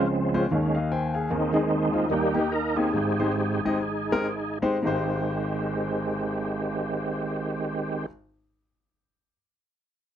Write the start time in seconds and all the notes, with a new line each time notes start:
Already playing: C#2 C#3 F3 G#3 C4
0.34 G#3 C4 C#4 F4 C5
0.51 D#2 D#3 G#3 C#4
0.75 G4 D#5 F5
0.92 C5 G5 G#5
1.14 G#4 F5 G#5
1.30 D#2 D#3 C4 D#4
1.53 G#3 C4 D#4 G#4
1.93 C4 D#4 F4
2.10 D#2 D#3 G3 A#3 D#4 G4
2.34 A#3 D#4 G4
2.52 A#4
2.76 A#3 C4 D#4 G4 G#4
2.93 G#1 G#2 C4 G4
3.20 G#3 C4 D#4 G4 C5
3.65 G#3 C4 D#4 G4 D#5
4.12 G#3 C4 D#4 G4 A#4
4.62 G#3 C4 D#4 G4 C5
4.83 G#1 D#3 G#3 C4 D#4 G4
4.87 C5